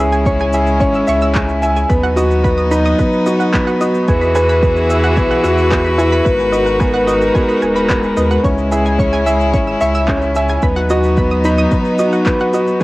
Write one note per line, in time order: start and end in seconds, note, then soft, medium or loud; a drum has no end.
0.00 0.82 C#2 loud
0.00 1.88 G#3 medium
0.00 0.26 C#4 medium
0.00 1.88 C#4 medium
0.00 1.87 E4 medium
0.00 0.25 G#4 medium
0.12 0.23 G#5 medium
0.12 shaker soft
0.26 0.52 C#4 loud
0.26 0.36 C#6 medium
0.26 kick loud
0.26 shaker soft
0.40 0.50 G#5 loud
0.40 shaker soft
0.53 0.80 G#4 medium
0.53 0.61 E5 medium
0.53 shaker medium
0.67 shaker soft
0.80 1.02 G#1 loud
0.80 1.06 C#4 loud
0.80 0.88 C#6 medium
0.80 kick loud
0.80 shaker soft
0.94 1.02 E6 medium
0.94 shaker soft
1.07 1.85 C#2 loud
1.07 1.23 E5 loud
1.07 1.19 C#6 medium
1.07 shaker medium
1.21 1.29 E6 loud
1.21 shaker soft
1.35 1.61 C#4 medium
1.35 1.42 C#5 medium
1.35 kick loud
1.35 clap medium
1.35 shaker soft
1.49 shaker soft
1.62 1.70 E5 medium
1.62 1.88 G#5 medium
1.62 shaker medium
1.76 1.87 G#5 medium
1.76 shaker soft
1.89 2.94 D#2 loud
1.89 4.06 F#3 medium
1.89 2.15 B3 medium
1.89 4.06 B3 medium
1.89 4.06 D#4 loud
1.89 2.00 B5 medium
1.89 kick loud
1.89 shaker soft
2.04 2.14 F#5 loud
2.04 shaker soft
2.16 2.43 F#4 medium
2.16 2.24 D#5 medium
2.16 shaker medium
2.31 shaker soft
2.44 2.70 B3 medium
2.44 2.51 B5 medium
2.44 kick loud
2.44 shaker soft
2.58 2.65 D#6 medium
2.58 shaker soft
2.71 2.97 D#4 loud
2.71 2.82 B5 medium
2.71 shaker medium
2.85 2.92 D#6 loud
2.85 shaker soft
2.99 3.25 B3 medium
2.99 3.06 B4 medium
2.99 kick loud
2.99 shaker soft
3.13 shaker soft
3.26 3.52 F#4 medium
3.26 3.33 D#5 medium
3.26 shaker medium
3.40 3.50 F#5 medium
3.40 shaker soft
3.53 3.79 B3 loud
3.53 3.64 B5 medium
3.53 kick loud
3.53 clap medium
3.53 shaker soft
3.67 3.77 F#5 loud
3.67 shaker soft
3.80 4.06 F#4 medium
3.80 3.88 D#5 medium
3.80 shaker medium
3.95 shaker soft
4.08 5.19 E2 loud
4.08 6.24 E3 medium
4.08 4.34 B3 loud
4.08 6.24 E4 medium
4.08 8.40 F#4 medium
4.08 6.24 G#4 medium
4.08 8.41 B4 loud
4.08 4.15 G#5 medium
4.08 kick loud
4.08 shaker soft
4.21 4.28 B5 medium
4.21 shaker soft
4.35 4.51 B4 loud
4.35 4.45 G#5 medium
4.35 shaker medium
4.49 4.56 B5 loud
4.49 shaker soft
4.63 4.89 B3 medium
4.63 4.69 B4 medium
4.63 kick loud
4.63 shaker soft
4.76 shaker soft
4.90 5.16 E5 medium
4.90 4.97 E5 medium
4.90 shaker medium
5.03 5.14 F#5 medium
5.03 shaker soft
5.17 5.38 B1 loud
5.17 5.43 B3 medium
5.17 5.27 G#5 medium
5.17 kick loud
5.17 shaker soft
5.31 5.41 F#5 loud
5.31 shaker soft
5.44 6.21 E2 medium
5.44 5.70 F#4 loud
5.44 5.51 E5 medium
5.44 shaker medium
5.58 shaker soft
5.71 5.97 B3 medium
5.71 5.78 G#5 medium
5.71 kick loud
5.71 clap medium
5.71 shaker soft
5.85 5.92 B5 medium
5.85 shaker soft
5.98 6.25 E4 loud
5.98 6.09 G#5 medium
5.98 shaker medium
6.12 6.19 B5 loud
6.12 shaker soft
6.25 7.30 G#1 loud
6.25 10.58 G#3 medium
6.25 6.52 B3 medium
6.25 8.42 D#4 medium
6.25 8.42 A#4 medium
6.25 6.33 B4 medium
6.25 kick loud
6.25 shaker soft
6.40 shaker soft
6.53 6.79 F#4 medium
6.53 6.60 D#5 medium
6.53 shaker medium
6.66 6.77 F#5 medium
6.66 shaker soft
6.80 7.06 B3 loud
6.80 6.91 G#5 medium
6.80 kick loud
6.80 shaker soft
6.94 7.04 F#5 loud
6.94 shaker soft
7.07 7.33 F#4 medium
7.07 7.14 D#5 medium
7.07 shaker medium
7.21 shaker soft
7.35 7.61 B3 loud
7.35 7.42 G#5 medium
7.35 kick loud
7.35 shaker soft
7.49 7.56 B5 medium
7.49 shaker soft
7.62 8.12 D#1 loud
7.62 7.89 B3 medium
7.62 7.73 G#5 medium
7.62 shaker medium
7.76 7.83 B5 loud
7.76 shaker soft
7.89 8.15 B4 medium
7.89 7.97 B4 medium
7.89 kick loud
7.89 clap medium
7.89 shaker soft
8.03 shaker soft
8.17 8.38 D#2 loud
8.17 8.32 B3 medium
8.17 8.24 D#5 medium
8.17 shaker medium
8.31 8.41 F#5 medium
8.31 shaker soft
8.44 9.56 C#2 loud
8.44 8.70 C#4 medium
8.44 10.60 C#4 medium
8.44 10.61 E4 loud
8.44 8.51 C#5 medium
8.44 kick loud
8.44 shaker soft
8.58 shaker soft
8.71 8.97 G#4 medium
8.71 8.79 E5 medium
8.71 shaker medium
8.86 8.96 G#5 medium
8.86 shaker soft
8.99 9.25 C#4 loud
8.99 9.09 C#6 medium
8.99 kick loud
8.99 shaker soft
9.13 9.23 G#5 loud
9.13 shaker soft
9.26 9.52 G#4 medium
9.26 9.33 E5 medium
9.26 shaker medium
9.40 shaker soft
9.53 9.75 G#1 medium
9.53 9.79 C#4 loud
9.53 9.60 C#6 medium
9.53 kick loud
9.53 shaker soft
9.67 9.74 E6 medium
9.67 shaker soft
9.81 10.58 C#2 medium
9.81 9.96 E5 loud
9.81 9.91 C#6 medium
9.81 shaker medium
9.94 10.01 E6 medium
9.94 shaker soft
10.08 10.34 C#4 medium
10.08 10.15 C#5 medium
10.08 kick loud
10.08 clap medium
10.08 shaker soft
10.22 shaker soft
10.35 10.43 E5 medium
10.35 10.61 G#5 medium
10.35 shaker medium
10.49 10.59 G#5 medium
10.49 shaker soft
10.62 11.67 D#2 loud
10.62 12.79 F#3 medium
10.62 10.89 B3 medium
10.62 12.79 B3 medium
10.62 12.79 D#4 medium
10.62 10.73 B5 medium
10.62 kick loud
10.62 shaker soft
10.76 10.86 F#5 loud
10.76 shaker soft
10.90 11.16 F#4 loud
10.90 10.97 D#5 medium
10.90 shaker medium
11.03 shaker soft
11.17 11.43 B3 medium
11.17 11.24 B5 medium
11.17 kick loud
11.17 shaker soft
11.31 11.38 D#6 medium
11.31 shaker soft
11.44 11.70 D#4 loud
11.44 11.55 B5 medium
11.44 shaker medium
11.58 11.65 D#6 loud
11.58 shaker soft
11.71 11.98 B3 medium
11.71 11.79 B4 medium
11.71 kick loud
11.71 shaker soft
11.85 shaker soft
11.99 12.25 F#4 medium
11.99 12.06 D#5 medium
11.99 shaker medium
12.12 12.23 F#5 medium
12.12 shaker soft
12.26 12.52 B3 loud
12.26 12.37 B5 medium
12.26 kick loud
12.26 clap medium
12.26 shaker soft
12.40 12.50 F#5 loud
12.40 shaker soft
12.53 12.79 F#4 medium
12.53 12.61 D#5 medium
12.53 shaker medium
12.67 shaker soft
12.80 12.84 B4 loud